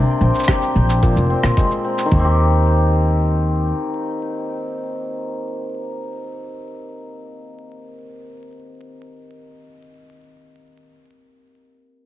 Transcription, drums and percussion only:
0.35 shaker soft
0.39 shaker soft
0.43 shaker soft
0.48 kick medium
0.48 cross-stick medium
0.48 shaker soft
0.62 shaker soft
0.89 shaker medium
1.03 kick medium
1.03 shaker soft
1.17 shaker soft
1.43 cross-stick medium
1.43 shaker soft
1.57 kick medium
1.57 shaker soft
1.71 shaker soft
1.98 shaker medium
2.12 kick medium

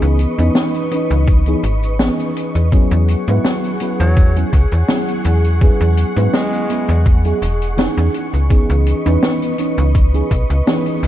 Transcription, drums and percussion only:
0.02 closed hi-hat medium
0.02 cabasa soft
0.19 closed hi-hat loud
0.39 closed hi-hat medium
0.39 cabasa medium
0.55 snare loud
0.55 closed hi-hat medium
0.55 cabasa medium
0.74 closed hi-hat medium
0.74 cabasa soft
0.91 closed hi-hat medium
1.10 closed hi-hat medium
1.10 cabasa medium
1.26 kick loud
1.26 closed hi-hat medium
1.26 cabasa medium
1.46 closed hi-hat medium
1.46 cabasa soft
1.63 closed hi-hat medium
1.83 closed hi-hat medium
1.83 cabasa medium
1.99 snare loud
1.99 closed hi-hat medium
1.99 cabasa medium
2.19 closed hi-hat medium
2.19 cabasa soft
2.37 closed hi-hat loud
2.55 closed hi-hat medium
2.55 cabasa medium
2.72 kick loud
2.72 closed hi-hat medium
2.72 cabasa medium
2.91 closed hi-hat medium
2.91 cabasa soft
3.08 closed hi-hat medium
3.27 closed hi-hat soft
3.27 cabasa medium
3.45 snare loud
3.45 closed hi-hat medium
3.45 cabasa medium
3.64 closed hi-hat medium
3.64 cabasa soft
3.80 closed hi-hat loud
4.00 closed hi-hat medium
4.00 cabasa medium
4.16 kick loud
4.16 closed hi-hat medium
4.16 cabasa medium
4.36 closed hi-hat medium
4.36 cabasa soft
4.53 kick medium
4.53 closed hi-hat medium
4.72 closed hi-hat medium
4.72 cabasa medium
4.88 snare loud
4.88 closed hi-hat medium
4.88 cabasa medium
5.08 closed hi-hat medium
5.08 cabasa soft
5.25 closed hi-hat medium
5.44 closed hi-hat medium
5.44 cabasa medium
5.61 kick loud
5.61 closed hi-hat medium
5.61 cabasa medium
5.81 closed hi-hat medium
5.81 cabasa medium
5.97 closed hi-hat medium
6.17 closed hi-hat medium
6.17 cabasa medium
6.34 snare loud
6.34 closed hi-hat medium
6.34 cabasa medium
6.53 closed hi-hat medium
6.53 cabasa soft
6.70 closed hi-hat medium
6.88 closed hi-hat medium
6.88 cabasa medium
7.06 kick loud
7.06 closed hi-hat medium
7.06 cabasa medium
7.25 closed hi-hat medium
7.25 cabasa soft
7.42 closed hi-hat loud
7.62 closed hi-hat medium
7.62 cabasa medium
7.78 snare loud
7.78 closed hi-hat medium
7.78 cabasa medium
7.97 closed hi-hat medium
7.97 cabasa soft
8.14 closed hi-hat medium
8.33 closed hi-hat medium
8.33 cabasa medium
8.50 kick loud
8.50 closed hi-hat medium
8.50 cabasa medium
8.70 closed hi-hat medium
8.70 cabasa soft
8.87 closed hi-hat medium
9.06 closed hi-hat medium
9.06 cabasa medium
9.23 snare loud
9.23 closed hi-hat medium
9.23 cabasa medium
9.42 closed hi-hat medium
9.42 cabasa medium
9.58 closed hi-hat loud
9.78 closed hi-hat medium
9.78 cabasa medium
9.95 kick loud
9.95 closed hi-hat medium
9.95 cabasa medium
10.14 closed hi-hat medium
10.14 cabasa soft
10.31 kick medium
10.31 closed hi-hat medium
10.50 closed hi-hat medium
10.50 cabasa medium
10.67 snare loud
10.67 closed hi-hat medium
10.67 cabasa medium
10.86 closed hi-hat medium
10.86 cabasa soft
11.03 closed hi-hat loud

